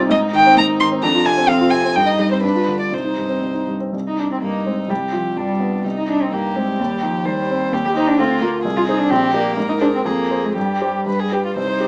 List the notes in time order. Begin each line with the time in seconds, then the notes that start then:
Already playing: C2 C3 D#4
0.00 C4
0.09 G#2 D#4 D#5
0.22 D#4
0.33 D#3 G5
0.46 C4
0.57 G#2 A#5
0.69 D#4
0.80 D#3 C6
0.91 C4
1.03 F2 D4 A#5
1.15 F4
1.25 C3 G#5
1.37 C4
1.48 F2 C4 F5
1.61 F4
1.71 C3 G#5
1.84 C4
1.95 G2 D#4 G5
2.07 D#4 D#5
2.19 G3
2.31 C4 C5
2.43 G2 D4 B4
2.55 F4
2.68 D3
2.79 D4 D5
2.91 C2 D#4 C5
3.04 D#4
3.17 G2
3.29 C4
3.41 C2
3.54 D#4
3.67 G2
3.80 C4
3.93 C2
4.07 D#4
4.18 D4 D#4
4.31 C4
4.42 G2 A#3 D#4
4.66 G#3 C4
4.88 C2 G3 G4
5.12 F3 F4
5.36 G2 G3 D4
5.60 B3
5.84 C2 D#4
5.97 D#4
6.10 D4 D#4
6.22 C4
6.33 G2 A#3 G4
6.56 G#3 C4
6.79 D#2 G3
7.02 F3 D#4
7.25 D#3 G3 C5
7.50 C4
7.72 D#2 G4
7.85 G4
7.95 D#4 C5
8.07 D4
8.18 D2 C4 F4
8.41 A#3 F4 A#4
8.64 C2 G#4
8.77 F4
8.88 D#4 G#4 C5
9.00 D4
9.10 A#1 C4 G4
9.34 A#3 G4 D5
9.56 G#2 A#4
9.69 D#4
9.81 D4 G#4 C5
9.95 C4
10.05 F2 A#3 G#4
10.30 G#4 C5
10.45 G#3
10.55 G2 G3 G4
10.82 G4 C5
11.06 G2 B4
11.19 G#4
11.32 G4 B4
11.46 F4
11.56 C2 D#4 C5
11.68 C5
11.80 G4